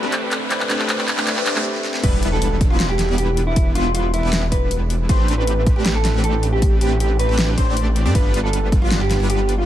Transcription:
Already playing: tine electric piano A3 C4 D4 G4 B4, analog synth pad C4 G4 D5 B5, riser
0.03 detuned saw bass A1, supersaw synth A3 C4 D4 G4 B4, synth arpeggio sound G4
0.12 synth arpeggio sound C5, clap, closed hi-hat
0.22 synth arpeggio sound B4
0.31 synth arpeggio sound A4, clap, closed hi-hat
0.41 synth arpeggio sound G4
0.50 tine electric piano A3 C4 D4 G4 B4, synth arpeggio sound C5, clap, closed hi-hat
0.60 synth arpeggio sound B4, clap
0.70 detuned saw bass A1, supersaw synth A3 C4 D4 G4 B4, synth arpeggio sound A4, clap, closed hi-hat
0.77 tine electric piano A3 C4 D4 G4 B4, synth arpeggio sound G4, clap
0.89 synth arpeggio sound C5, clap, closed hi-hat
0.98 synth arpeggio sound B4, clap
1.08 synth arpeggio sound A4, clap, closed hi-hat
1.17 detuned saw bass A1, supersaw synth A3 C4 D4 G4 B4, synth arpeggio sound G4, clap
1.25 tine electric piano A3 C4 D4 G4, synth arpeggio sound C5, clap, closed hi-hat
1.29 tine electric piano B4
1.36 synth arpeggio sound B4, clap
1.46 detuned saw bass A1, supersaw synth A3 C4 D4 G4 C5, synth arpeggio sound C5, clap, closed hi-hat
1.56 detuned saw bass A1, supersaw synth A3 C4 D4 G4 D5, synth arpeggio sound A4, clap
1.75 snare
1.84 snare
1.94 snare
2.03 detuned saw bass E1, supersaw synth G3 B3 D4 E4 B4, clean electric guitar B4, kick, closed hi-hat, crash, impact
2.23 detuned saw bass E1, supersaw synth G3 B3 D4 E4 B4, closed hi-hat
2.32 clean electric guitar A4
2.42 closed hi-hat
2.61 kick, closed hi-hat
2.70 detuned saw bass E1, supersaw synth G3 B3 D4 E4 B4, clean electric guitar F4
2.80 snare, closed hi-hat
2.89 clean electric guitar G4
2.99 snare, closed hi-hat
3.09 detuned saw bass E1, supersaw synth G3 B3 D4 E4 B4
3.18 clean electric guitar G4, closed hi-hat
3.37 closed hi-hat
3.47 clean electric guitar E4
3.56 kick, closed hi-hat
3.75 detuned saw bass E1, supersaw synth G3 B3 D4 E4 B4, clean electric guitar F4, closed hi-hat
3.95 clean electric guitar F4, closed hi-hat
4.14 clean electric guitar E4, closed hi-hat
4.23 detuned saw bass E1, supersaw synth G3 B3 D4 E4 B4
4.33 snare, closed hi-hat
4.52 clean electric guitar B4, kick, closed hi-hat
4.71 closed hi-hat
4.90 closed hi-hat
5.09 detuned saw bass A1, supersaw synth A3 C4 D4 G4 B4, clean electric guitar C5, kick, closed hi-hat
5.28 detuned saw bass A1, supersaw synth A3 C4 D4 G4 B4, closed hi-hat
5.38 clean electric guitar B4
5.47 closed hi-hat
5.67 kick, closed hi-hat
5.76 detuned saw bass A1, supersaw synth A3 C4 D4 G4 B4, clean electric guitar G4
5.86 snare, closed hi-hat
5.95 clean electric guitar A4
6.05 snare, closed hi-hat
6.14 detuned saw bass A1, supersaw synth A3 C4 D4 G4 B4
6.24 clean electric guitar A4, closed hi-hat
6.43 closed hi-hat
6.53 clean electric guitar G4
6.62 kick, closed hi-hat
6.81 detuned saw bass A1, supersaw synth A3 C4 D4 G4 B4, clean electric guitar G4, closed hi-hat
7.00 clean electric guitar G4, closed hi-hat
7.19 clean electric guitar B4, closed hi-hat
7.29 detuned saw bass A1, supersaw synth A3 C4 D4 G4 B4
7.39 snare, closed hi-hat
7.58 detuned saw bass A1, supersaw synth A3 C4 D4 G4 C5, clean electric guitar C5, kick, closed hi-hat
7.67 detuned saw bass A1, supersaw synth A3 C4 D4 G4 D5
7.77 closed hi-hat
7.96 closed hi-hat
8.06 detuned saw bass A2, supersaw synth A3 C4 D4 G4 D5
8.15 detuned saw bass G1, supersaw synth G3 B3 D4 F4 B4, clean electric guitar B4, kick, closed hi-hat
8.34 detuned saw bass G1, supersaw synth G3 B3 D4 F4 B4, closed hi-hat
8.44 clean electric guitar A4
8.53 closed hi-hat
8.72 kick, closed hi-hat
8.82 detuned saw bass G1, supersaw synth G3 B3 D4 F4 B4, clean electric guitar F4
8.91 snare, closed hi-hat
9.01 clean electric guitar G4
9.11 snare, closed hi-hat
9.20 detuned saw bass G1, supersaw synth G3 B3 D4 F4 B4
9.30 clean electric guitar G4, closed hi-hat
9.49 closed hi-hat
9.58 clean electric guitar F4

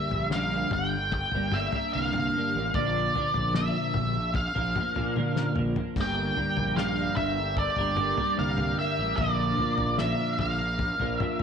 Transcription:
Already playing: clean electric guitar G2 D3 G3 A#3 D4 A#4, lead electric guitar E5
0.11 fingered electric bass A#1, floor tom
0.31 clean electric guitar G2 D3, lead electric guitar F5, snare
0.35 clean electric guitar G3 A#3 D4 A#4
0.52 clean electric guitar G3 A#3 D4 A#4
0.71 fingered electric bass G1, lead electric guitar G5, muted clean electric guitar stroke, floor tom, mid tom
1.12 lead electric guitar G5, kick, floor tom
1.32 fingered electric bass G1, clean electric guitar D4 A#4, floor tom
1.36 clean electric guitar G3 A#3
1.52 clean electric guitar G3 A#3 D4, lead electric guitar E5, mid tom
1.56 clean electric guitar A#4
1.72 clean electric guitar G3 A#3 D4 A#4, floor tom
1.93 fingered electric bass C2, clean electric guitar G2 D3 G3 A#3 D4 A#4, lead electric guitar F5
2.13 clean electric guitar A#3 D4 A#4, floor tom
2.18 clean electric guitar G3
2.35 clean electric guitar G3 A#3 D4 A#4
2.55 fingered electric bass A1, clean electric guitar G3 A#3 D4 A#4
2.74 fingered electric bass A#1, clean electric guitar A#2 D3 F3 A#3 D4 A#4, lead electric guitar D5, kick, floor tom
3.15 clean electric guitar F3 A#3 D4 A#4, floor tom
3.34 fingered electric bass A#1, floor tom
3.54 clean electric guitar A#2 D3 F3 A#3 D4 A#4, lead electric guitar E5, snare
3.75 clean electric guitar F3 A#3 D4 A#4
3.94 fingered electric bass A#1, muted clean electric guitar stroke, floor tom, mid tom
4.34 lead electric guitar F5, kick, floor tom
4.55 fingered electric bass A#1, clean electric guitar F3 A#3 D4 A#4, floor tom
4.76 clean electric guitar F3 A#3 D4 A#4, floor tom, mid tom
4.95 fingered electric bass A#2, clean electric guitar F3 A#3 D4 A#4, floor tom
5.15 clean electric guitar A#2 D3 F3 A#3 D4 A#4, high tom
5.35 clean electric guitar F3 A#3 D4 A#4, snare
5.55 fingered electric bass A#1, clean electric guitar F3 A#3 D4 A#4, mid tom
5.75 clean electric guitar F3 A#3 D4 A#4, floor tom
5.96 fingered electric bass G1, clean electric guitar G2 D3 G3 A#3 D4 A#4, tonewheel organ G3 A#3 D4 G4 A#4, kick, floor tom, splash
6.01 lead electric guitar G5
6.37 clean electric guitar G3 A#3 D4 A#4, floor tom
6.57 fingered electric bass A#1, floor tom
6.76 clean electric guitar G2 D3 G3 A#3 D4 A#4, lead electric guitar F5, snare
6.97 clean electric guitar G3 A#3 D4 A#4
7.16 fingered electric bass G1, lead electric guitar E5, muted clean electric guitar stroke, floor tom, mid tom
7.57 lead electric guitar D5, kick, floor tom
7.76 fingered electric bass G1, clean electric guitar G3 A#3 D4 A#4, floor tom
7.97 clean electric guitar G3 A#3 D4 A#4, mid tom
8.17 clean electric guitar G3 A#3 D4 A#4, floor tom
8.37 fingered electric bass C2, clean electric guitar G2 D3 G3 A#3 D4 A#4, lead electric guitar F5
8.58 clean electric guitar G3 A#3 D4 A#4, floor tom
8.78 clean electric guitar G3 A#3 D4 A#4, lead electric guitar E5
8.99 fingered electric bass A1, clean electric guitar G3 A#3 D4 A#4
9.17 fingered electric bass A#1, clean electric guitar A#2 D3 F3 A#3 D4 A#4, tonewheel organ F3 F4, lead electric guitar D5, kick, floor tom
9.58 clean electric guitar F3 A#3 D4 A#4, floor tom
9.78 fingered electric bass A#1, floor tom
9.98 clean electric guitar A#2 D3 F3 A#3 D4 A#4, lead electric guitar E5, snare
10.19 clean electric guitar F3 A#3 D4 A#4
10.39 fingered electric bass A#1, lead electric guitar F5, muted clean electric guitar stroke, floor tom, mid tom
10.79 kick, floor tom
11.00 fingered electric bass A#1, clean electric guitar F3 A#3 D4 A#4, floor tom
11.17 clean electric guitar F3, lead electric guitar E5, floor tom, mid tom
11.21 clean electric guitar A#3 D4 A#4
11.40 floor tom

